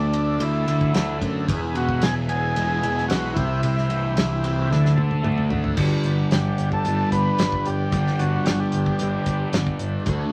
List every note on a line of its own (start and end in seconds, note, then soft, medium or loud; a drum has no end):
0.00 0.38 D2 medium
0.00 0.66 D3 medium
0.00 0.39 A3 medium
0.00 0.44 D4 medium
0.00 1.45 A4 medium
0.00 1.45 D5 medium
0.00 1.44 E5 medium
0.00 1.45 A5 medium
0.13 1.19 D4 medium
0.13 ride medium
0.39 0.66 D2 medium
0.39 0.93 A3 medium
0.39 1.18 E4 medium
0.39 ride medium
0.67 0.93 D2 medium
0.67 1.48 D3 medium
0.67 ride medium
0.81 kick medium
0.94 1.20 D2 medium
0.94 1.48 A3 medium
0.94 snare loud
0.94 ride medium
1.21 1.47 F#2 medium
1.21 1.48 D4 medium
1.21 kick medium
1.21 ride medium
1.48 2.00 E1 medium
1.48 2.83 E2 medium
1.48 3.35 G#4 medium
1.48 3.35 B4 medium
1.48 3.35 E5 medium
1.48 3.35 G#5 medium
1.48 kick loud
1.48 ride medium
1.75 3.09 B2 medium
1.75 2.04 F#4 medium
1.75 ride medium
1.89 kick medium
2.02 2.54 E1 medium
2.02 2.81 E3 medium
2.02 2.15 G#4 medium
2.02 snare loud
2.02 ride medium
2.29 3.36 B3 medium
2.29 3.06 G#4 medium
2.29 ride medium
2.55 2.82 E1 medium
2.55 3.08 G#3 medium
2.55 ride medium
2.82 3.09 E1 medium
2.82 3.36 E3 medium
2.82 ride medium
2.98 snare soft
3.08 3.35 B1 medium
3.08 3.36 G#3 medium
3.08 3.37 F#4 medium
3.08 snare loud
3.08 ride medium
3.34 3.62 C2 medium
3.34 3.61 C3 medium
3.34 4.92 E4 medium
3.34 4.69 G4 medium
3.34 4.69 C5 medium
3.34 5.76 E5 medium
3.34 4.69 G5 medium
3.34 kick medium
3.34 ride medium
3.62 4.15 C2 medium
3.62 4.70 C3 medium
3.62 ride medium
3.78 snare soft
3.89 4.14 E3 medium
3.89 ride medium
4.16 4.68 C2 medium
4.16 4.69 E3 medium
4.16 snare loud
4.16 ride medium
4.43 4.70 C4 medium
4.43 ride medium
4.69 4.97 D2 medium
4.69 4.95 D3 medium
4.69 5.78 A4 medium
4.69 5.78 D5 medium
4.69 5.78 A5 medium
4.69 snare medium
4.86 snare soft
4.96 5.23 D2 medium
4.96 5.77 D3 medium
4.96 high tom medium
5.11 high tom medium
5.23 5.50 D2 medium
5.23 5.77 A3 medium
5.23 mid tom medium
5.38 mid tom medium
5.50 5.77 G#1 medium
5.50 5.77 D4 medium
5.50 floor tom medium
5.64 floor tom medium
5.76 5.94 G1 medium
5.76 6.84 G2 medium
5.76 6.84 D3 medium
5.76 6.87 G3 medium
5.76 10.32 D4 medium
5.76 10.03 G4 medium
5.76 10.03 B4 medium
5.76 10.03 D5 medium
5.76 kick loud
5.76 crash loud
6.04 6.21 G1 medium
6.04 closed hi-hat medium
6.31 6.47 G1 medium
6.31 6.70 G4 medium
6.31 snare loud
6.31 closed hi-hat medium
6.58 6.74 G1 medium
6.58 closed hi-hat medium
6.72 7.10 A4 medium
6.72 kick medium
6.84 7.01 G1 medium
6.84 7.90 G2 medium
6.84 7.91 D3 medium
6.84 7.92 G3 medium
6.84 closed hi-hat medium
7.12 7.28 G1 medium
7.12 7.67 B4 loud
7.12 kick medium
7.12 closed hi-hat medium
7.38 7.55 G1 medium
7.38 snare loud
7.38 closed hi-hat medium
7.52 kick medium
7.66 7.82 G1 medium
7.66 8.21 G4 medium
7.66 closed hi-hat medium
7.92 8.09 G1 medium
7.92 8.98 G2 medium
7.92 8.99 D3 medium
7.92 9.00 G3 medium
7.92 kick loud
7.92 closed hi-hat medium
8.07 snare soft
8.19 8.36 G1 medium
8.19 8.47 F#4 medium
8.19 closed hi-hat medium
8.45 8.62 G1 medium
8.45 8.52 G4 medium
8.45 snare loud
8.45 closed hi-hat medium
8.52 8.59 F#4 medium
8.60 9.49 G4 medium
8.72 8.89 G1 medium
8.72 closed hi-hat medium
8.86 kick medium
8.99 9.16 G1 medium
8.99 10.05 G2 medium
8.99 10.05 D3 medium
8.99 10.06 G3 medium
8.99 closed hi-hat medium
9.26 9.42 G1 medium
9.26 kick medium
9.26 closed hi-hat medium
9.53 9.69 G1 medium
9.53 snare loud
9.53 closed hi-hat medium
9.67 kick medium
9.79 9.96 G1 medium
9.79 closed hi-hat medium
10.06 10.23 D2 medium
10.06 10.32 D3 medium
10.06 10.32 A3 medium
10.06 10.32 D4 loud
10.06 10.32 F#4 medium
10.06 10.32 C#5 medium
10.06 kick loud
10.06 closed hi-hat medium